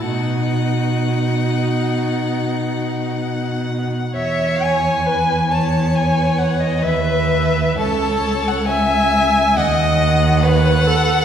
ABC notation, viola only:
X:1
M:4/4
L:1/8
Q:1/4=66
K:E
V:1 name="Viola"
D8 | c2 B c3 B2 | A2 e2 d2 B A |]